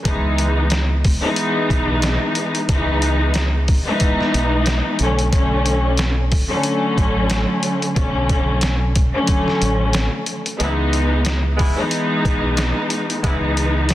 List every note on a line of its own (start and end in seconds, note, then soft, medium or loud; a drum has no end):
0.04 1.20 C#2 loud
0.04 0.97 E3 loud
0.04 0.97 G#3 medium
0.04 0.98 B3 medium
0.04 0.98 D#4 loud
0.04 kick loud
0.04 closed hi-hat medium
0.38 closed hi-hat medium
0.70 snare loud
0.70 closed hi-hat medium
1.04 kick medium
1.04 open hi-hat medium
1.22 2.59 E3 loud
1.22 2.59 G#3 loud
1.22 2.59 B3 loud
1.22 2.59 D#4 loud
1.36 closed hi-hat loud
1.70 2.16 B1 medium
1.70 kick loud
1.70 closed hi-hat medium
2.02 snare loud
2.02 closed hi-hat medium
2.35 closed hi-hat medium
2.55 closed hi-hat medium
2.69 3.83 C#2 loud
2.69 3.62 E3 loud
2.69 3.62 G#3 medium
2.69 3.62 B3 medium
2.69 3.62 D#4 loud
2.69 kick loud
2.69 closed hi-hat loud
3.02 closed hi-hat medium
3.34 snare loud
3.34 closed hi-hat medium
3.68 kick medium
3.68 open hi-hat medium
3.87 5.00 E3 loud
3.87 5.00 G#3 loud
3.87 5.00 B3 loud
3.87 5.00 D#4 loud
4.00 kick medium
4.00 closed hi-hat loud
4.21 snare soft
4.34 4.80 B1 medium
4.34 closed hi-hat medium
4.66 snare loud
4.66 closed hi-hat medium
4.99 6.33 B1 loud
4.99 5.23 D3 medium
4.99 5.23 F#3 medium
4.99 5.23 A3 medium
4.99 5.23 C#4 loud
4.99 closed hi-hat medium
5.19 closed hi-hat medium
5.32 6.25 D3 loud
5.32 6.25 F#3 medium
5.32 6.25 A3 medium
5.32 6.25 C#4 loud
5.32 kick loud
5.32 closed hi-hat medium
5.66 closed hi-hat medium
5.97 snare loud
5.97 closed hi-hat medium
6.32 kick medium
6.32 open hi-hat medium
6.49 7.86 D3 loud
6.49 7.86 F#3 loud
6.49 7.86 A3 medium
6.49 7.86 C#4 loud
6.63 closed hi-hat loud
6.98 7.44 A1 medium
6.98 kick medium
6.98 closed hi-hat medium
7.30 snare loud
7.30 closed hi-hat medium
7.63 closed hi-hat medium
7.82 closed hi-hat medium
7.96 9.11 B1 loud
7.96 8.89 D3 medium
7.96 8.89 F#3 medium
7.96 8.89 A3 medium
7.96 8.89 C#4 loud
7.96 kick loud
7.96 closed hi-hat medium
8.29 kick loud
8.29 closed hi-hat medium
8.61 snare loud
8.61 closed hi-hat medium
8.96 kick medium
8.96 closed hi-hat medium
9.14 10.34 D3 loud
9.14 10.34 F#3 medium
9.14 10.34 A3 medium
9.14 10.34 C#4 loud
9.27 kick medium
9.27 closed hi-hat loud
9.48 snare soft
9.62 10.08 A1 medium
9.62 closed hi-hat medium
9.93 snare loud
9.93 closed hi-hat medium
10.26 closed hi-hat medium
10.46 closed hi-hat medium
10.59 11.75 C#2 loud
10.59 10.72 E3 loud
10.59 11.52 E3 loud
10.59 10.72 G#3 medium
10.59 11.52 G#3 medium
10.59 10.72 B3 medium
10.59 11.52 B3 loud
10.59 11.53 D#4 loud
10.59 10.72 E4 loud
10.59 closed hi-hat medium
10.93 closed hi-hat medium
11.25 snare loud
11.25 closed hi-hat medium
11.57 11.79 E3 loud
11.57 11.79 G#3 loud
11.57 11.79 B3 loud
11.57 11.79 E4 loud
11.57 kick medium
11.57 open hi-hat medium
11.77 13.14 E3 loud
11.77 13.14 G#3 loud
11.77 13.14 B3 loud
11.77 13.14 D#4 loud
11.91 closed hi-hat loud
12.25 12.71 B1 medium
12.25 kick medium
12.25 closed hi-hat medium
12.57 snare loud
12.57 closed hi-hat medium
12.90 closed hi-hat medium
13.10 closed hi-hat medium
13.24 13.94 C#2 loud
13.24 13.36 E3 loud
13.24 13.94 E3 loud
13.24 13.36 G#3 medium
13.24 13.94 G#3 medium
13.24 13.36 B3 medium
13.24 13.94 B3 medium
13.24 13.94 D#4 loud
13.24 13.36 E4 loud
13.24 kick loud
13.24 closed hi-hat medium
13.57 closed hi-hat medium
13.89 snare loud
13.89 closed hi-hat medium